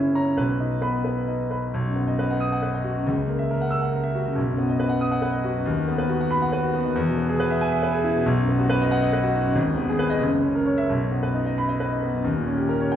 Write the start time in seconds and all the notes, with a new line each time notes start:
Already playing: F#1 C#4 E4 C#5
0.15 C#5 A#5
0.37 B1 B4
0.60 D#4
0.81 B3 B4 B5
1.05 B4
1.28 D#4
1.51 B4 B5
1.74 B1
1.86 F#2
1.96 B3
2.07 D#5
2.19 B4
2.30 F#5
2.40 D#6
2.52 F#5
2.63 B4
2.74 D#5
2.84 F#4
2.94 F#2
3.07 C#2
3.17 C#3
3.28 A#3
3.39 E5
3.51 A#4
3.61 F#5
3.71 E6
3.81 F#5
3.93 A#4
4.03 E5
4.15 F#4
4.26 C#3
4.36 B1
4.58 B3
4.69 D#5
4.79 B4
4.89 F#5
5.01 D#6
5.11 F#5
5.22 B4
5.32 D#5
5.44 F#4
5.55 F#2
5.66 D#2
5.77 D#3
5.88 B3
5.98 B4
6.09 F#4
6.21 F#5
6.31 B5
6.42 F#5
6.52 B4
6.63 F#4
6.73 B3
6.85 D#3
6.96 E2
7.07 B2
7.18 B3
7.29 G#4
7.40 B4
7.51 E5
7.61 G#5
7.72 E5
7.83 B4
7.93 G#4
8.04 E4
8.15 B2
8.26 B1
8.37 F#2
8.49 B3
8.59 F#4
8.70 B4
8.81 D#5
8.91 F#5
9.02 D#5
9.13 B4
9.23 F#4
9.35 D#4
9.44 F#2
9.55 G#1
9.67 D#2
9.77 B3
9.89 G#4
9.99 B4
10.10 D#5
10.21 F#1
10.32 C#2
10.43 C#4
10.55 A#4
10.66 C#5
10.78 E5
10.89 B1
11.01 F#2
11.12 B3
11.23 B4
11.34 D#4
11.46 D#5
11.58 B5
11.69 D#5
11.80 B4
11.92 D#4
12.03 B3
12.14 F#2
12.24 D#2
12.36 A#2
12.46 C#4
12.57 G4
12.69 A#4
12.80 C#5
12.92 G5